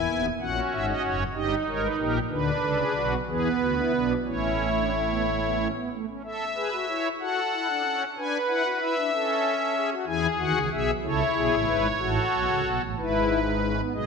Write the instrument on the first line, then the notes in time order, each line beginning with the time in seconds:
pipe organ
Already playing: E4 G#5
0.07 D#1 D#2 B3
0.40 A#1 A#2 C#4 F#4 F#5
0.71 G#1 G#2 E5
0.89 D#5
1.04 F#1 F#2 C#5
1.34 G1 G2 D#4 G4 D#5
1.68 G#1 G#2 A#4 C#5
1.82 B4
1.98 A#1 A#2 G4 A#4
2.30 D2 D3 D4 B4
2.63 C#2 C#3 A4
2.78 G#4
2.95 B1 B2 F#4
3.28 E2 E3 B3 G#4 B4
3.61 D2 D3 F#4
3.78 E4
3.94 B1 B2 D4
4.26 A1 A2 C#4 E4 C#5
4.76 D4
4.93 C#4
5.09 B3
5.26 A3
5.43 B3
5.59 C#4
5.76 B3
5.92 A3
6.09 C#4
6.24 A4 E5
6.56 G#4 B4
6.72 F#4
6.88 E4 C#5
7.20 F#4 A4 F#5
7.53 E4
7.68 D4
7.84 C#4
8.18 D4 B4 G#5
8.48 E4 F#5
8.64 F#4
8.81 E4 E5
8.97 D4
9.13 C#4 A4
9.60 A4
9.76 G#4
9.91 F#4
10.07 E2 E3 E4 G#4 G#5
10.38 D#2 D#3 F#4 F#5
10.54 C#2 C#3
10.71 B1 B2 G#4 E5
11.02 C#2 C#3 E4 A4 C#5
11.35 B1 B2 G#4
11.51 A1 A2
11.67 G#1 G#2 B4
11.98 A1 A2 F#4 A4
12.33 B1 B2
12.48 C#2 C#3
12.65 B1 B2
12.82 A1 A2
12.98 G#1 G#2 E4 B4
13.46 D#4
13.63 C#4
13.79 B3
13.94 B1 B2 G#3 G#4 D#5